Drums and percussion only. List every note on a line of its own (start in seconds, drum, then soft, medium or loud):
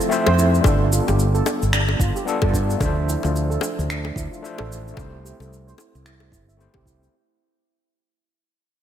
0.01 cabasa soft
0.12 cabasa soft
0.27 high bongo medium
0.39 cabasa medium
0.55 cabasa soft
0.64 kick loud
0.64 high bongo medium
0.64 cabasa soft
0.92 cabasa medium
1.08 high bongo medium
1.08 cabasa soft
1.19 cabasa soft
1.35 cabasa soft
1.46 high bongo medium
1.46 cabasa medium
1.62 cabasa soft
1.73 finger snap medium
1.73 cabasa soft
1.89 high bongo medium
2.00 kick loud
2.00 cabasa medium
2.16 cabasa soft
2.28 cabasa soft
2.42 kick loud
2.42 high bongo medium
2.54 kick medium
2.54 cabasa medium
2.70 cabasa soft
2.81 kick loud
2.81 high bongo medium
2.81 cabasa soft
3.09 cabasa medium
3.23 high bongo medium
3.23 cabasa soft
3.36 cabasa soft
3.52 cabasa soft
3.61 high bongo loud
3.61 cabasa medium
3.79 cabasa soft
3.90 finger snap medium
3.90 cabasa soft
4.05 high bongo medium
4.16 kick loud
4.16 cabasa medium
4.33 cabasa soft
4.45 cabasa soft
4.58 high bongo medium
4.72 cabasa medium
4.88 cabasa soft
4.97 kick loud
4.97 high bongo medium
4.97 cabasa soft
5.26 cabasa medium
5.40 high bongo medium
5.40 cabasa soft
5.53 cabasa soft
5.68 cabasa soft
5.78 high bongo medium
5.78 cabasa medium
5.95 cabasa soft
6.06 finger snap medium
6.06 cabasa soft
6.20 high bongo medium
6.32 kick medium
6.32 cabasa medium
6.49 cabasa soft
6.61 cabasa soft
6.74 kick medium
6.74 high bongo medium
6.86 kick medium
6.86 cabasa medium
7.03 cabasa soft